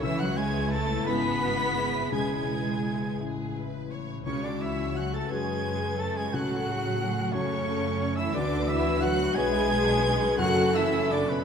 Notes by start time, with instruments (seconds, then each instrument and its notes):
Already playing: harp C#4
0.03 grand piano C#2 C#3, double bass section C#2, harp C#3, cello section E3, viola section E4, violin section E4 C#5 E6, french horn section B4, oboe E5, flute E5
0.19 cello section F#3, viola section F#4, flute F#5, oboe F#5, violin section F#6
0.37 cello section G#3, harp C#4, viola section G#4, oboe G#5, flute G#5, violin section G#6
0.70 cello section A3, harp E4, viola section A4, oboe A5, flute A5, violin section A6
1.06 double bass section G#1, grand piano G#3 C#4 E4, cello section B3, french horn section E4, harp G#4, violin section G#4 B4 B6, viola section B4, oboe B5, flute B5
1.42 harp E4, french horn section F#4, violin section F#4
1.77 harp C#4, violin section E4, french horn section G#4
2.12 double bass section E1, grand piano C#2 C#3, harp C#3, cello section G#3, french horn section E4, viola section G#4, violin section G#4 B4 G#6, oboe G#5, flute G#5
2.49 harp G#3
2.85 harp E4
3.20 double bass section A1, grand piano G#3 C#4 E4, harp G#4, violin section G#4
3.56 harp E4, violin section B4
3.92 harp B3, violin section C#5
4.26 double bass section C#2, grand piano C#2 C#3, cello section C#3, harp C#3, viola section C#4, violin section C#4 C#5 C#6, french horn section F#4, oboe C#5, flute C#5
4.43 cello section D3, viola section D4, flute D5, oboe D5, violin section D6
4.60 cello section E3, viola section E4, flute E5, oboe E5, violin section E6
4.95 cello section F#3, viola section F#4, harp F#4, flute F#5, oboe F#5, violin section F#6
5.13 cello section A3, viola section A4, oboe A5, flute A5, violin section A6
5.29 double bass section F#2, grand piano F#3 C#4 F#4, cello section G#3, viola section G#4, french horn section B4, violin section B4 G#6, harp C#5, oboe G#5, flute G#5
5.65 harp F#4
5.98 cello section A3, viola section A4, oboe A5, flute A5, violin section A6
6.15 cello section G#3, viola section G#4, oboe G#5, flute G#5, violin section G#6
6.31 grand piano C#2 C#3, double bass section A2, harp C#3, cello section F#3, viola section F#4, french horn section A4, violin section A4 F#6, oboe F#5, flute F#5
6.66 harp A3, violin section F#4, french horn section G#4
6.99 french horn section A3, harp F#4, violin section G#4
7.32 double bass section F#2, cello section C#3, grand piano A3 C#4 F#4, viola section C#4, violin section C#4 A4 C#6, harp A4, flute C#5, oboe C#5
7.67 harp F#4
8.16 cello section E3, viola section E4, oboe E5, flute E5, violin section E6
8.34 grand piano D2 D3, double bass section D2, harp D3, cello section D3, violin section B3 B4 D6, viola section D4, french horn section F#4, oboe D5, flute D5
8.67 cello section E3, viola section E4, harp C#5, oboe E5, flute E5, violin section E6
9.01 cello section F#3, harp F#4, viola section F#4, oboe F#5, flute F#5, violin section F#6
9.35 double bass section B1, cello section G#3, grand piano B3 F#4 C#5, violin section E4 B4 G#6, viola section G#4, french horn section B4, harp B4, oboe G#5, flute G#5
9.71 violin section D4, harp F#4
10.05 violin section C#4, harp C#4
10.37 grand piano F#1 F#2 A3 C#4 F#4, double bass section F#1, harp F#2, cello section F#3, violin section C#4 A4 F#6, viola section F#4, french horn section A4, oboe F#5, flute F#5
10.74 cello section E3, harp A3, viola section E4, oboe E5, flute E5, violin section E6
11.10 cello section D3, harp C#4 F#4, viola section D4, oboe D5, flute D5, violin section D6
11.29 cello section B2, viola section B3, oboe B4, flute B4, violin section B5